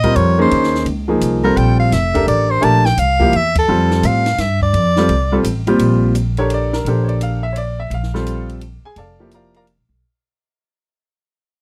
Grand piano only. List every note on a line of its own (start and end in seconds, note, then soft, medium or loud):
0.03 0.36 G3 medium
0.03 0.36 C4 medium
0.03 0.37 F4 medium
0.03 0.37 A#4 medium
0.38 0.84 A#3 medium
0.38 0.84 C#4 medium
0.38 0.84 D#4 medium
0.38 0.84 G#4 medium
1.08 1.42 F3 medium
1.08 1.42 A#3 medium
1.08 1.42 D#4 soft
1.08 1.42 G#4 medium
1.44 1.89 G3 medium
1.44 1.89 C4 medium
1.44 1.90 F4 medium
1.44 1.90 A4 medium
2.14 2.60 D4 medium
2.14 2.60 G4 medium
2.14 2.60 A4 medium
2.14 2.60 A#4 medium
2.61 2.82 A3 medium
2.61 2.83 D4 medium
2.61 2.82 G4 medium
2.61 2.83 A#4 medium
3.20 3.31 F3 medium
3.20 3.31 A#3 medium
3.20 3.32 E4 medium
3.20 3.32 G4 medium
3.68 4.21 G3 medium
3.68 4.22 C4 medium
3.68 4.22 F4 medium
3.68 4.22 A4 medium
4.97 5.08 G3 medium
4.97 5.08 C4 medium
4.97 5.08 F4 medium
4.97 5.09 A4 medium
5.32 5.43 G3 medium
5.32 5.43 C4 medium
5.32 5.43 F4 medium
5.32 5.43 A4 medium
5.67 6.12 A#2 medium
5.67 6.12 G3 medium
5.67 6.12 C4 medium
5.67 6.12 F4 medium
5.67 6.12 G4 medium
6.38 6.83 D4 medium
6.38 6.83 G4 medium
6.38 6.83 A4 medium
6.38 6.72 A#4 medium
6.38 6.50 C#5 medium
6.54 6.74 D5 medium
6.73 6.85 A#4 medium
6.87 7.39 D4 medium
6.87 7.39 G4 medium
6.87 7.39 A4 medium
6.87 7.40 A#4 medium
6.87 7.08 C5 medium
7.04 7.06 C#5 medium
7.08 7.20 D5 medium
7.22 7.43 F5 medium
7.43 7.55 E5 medium
7.53 7.55 C#5 soft
7.57 7.78 D5 medium
7.80 7.91 E5 medium
7.94 8.46 F5 medium
8.14 8.59 G3 medium
8.14 8.59 C4 medium
8.14 8.59 F4 medium
8.14 8.59 A4 medium
8.85 8.97 G#4 medium
8.85 8.97 G#5 medium
8.98 9.30 A4 medium
8.98 9.30 D5 medium
8.98 9.30 F5 medium
8.98 9.29 A5 medium
9.20 9.64 F3 medium
9.20 9.64 A#3 soft
9.20 9.65 E4 soft
9.20 9.65 G4 medium
9.34 9.55 A#4 medium
9.34 9.55 D5 medium
9.34 9.55 F5 medium
9.34 9.55 A#5 medium
9.56 9.63 A#4 medium
9.56 9.63 D5 medium
9.56 9.63 F5 medium
9.56 9.63 A#5 loud